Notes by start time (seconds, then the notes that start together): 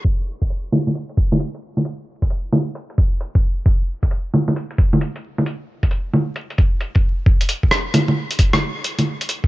0.05 kick, closed hi-hat
0.42 kick, closed hi-hat
0.50 closed hi-hat
0.72 low bongo
0.87 low bongo
0.95 closed hi-hat
1.09 closed hi-hat
1.17 kick, closed hi-hat
1.32 low bongo
1.40 closed hi-hat
1.54 closed hi-hat
1.77 low bongo
1.85 closed hi-hat
2.22 kick, closed hi-hat
2.30 closed hi-hat
2.53 low bongo
2.75 closed hi-hat
2.90 closed hi-hat
2.98 kick, closed hi-hat
3.21 closed hi-hat
3.35 kick, closed hi-hat
3.66 kick, closed hi-hat
4.03 kick, closed hi-hat
4.11 closed hi-hat
4.34 low bongo
4.48 low bongo
4.56 closed hi-hat
4.71 closed hi-hat
4.78 kick, closed hi-hat
4.93 low bongo
5.01 closed hi-hat
5.16 closed hi-hat
5.38 low bongo
5.46 closed hi-hat
5.83 kick, closed hi-hat
5.91 closed hi-hat
6.14 low bongo
6.36 closed hi-hat
6.50 closed hi-hat
6.58 kick, closed hi-hat
6.81 closed hi-hat
6.95 kick, closed hi-hat
7.26 kick
7.41 closed hi-hat
7.49 closed hi-hat
7.63 kick
7.71 cross-stick
7.94 closed hi-hat, low bongo
8.08 low bongo
8.31 closed hi-hat
8.39 kick, closed hi-hat
8.53 cross-stick, low bongo
8.84 closed hi-hat
8.98 closed hi-hat, low bongo
9.21 closed hi-hat
9.29 closed hi-hat
9.44 kick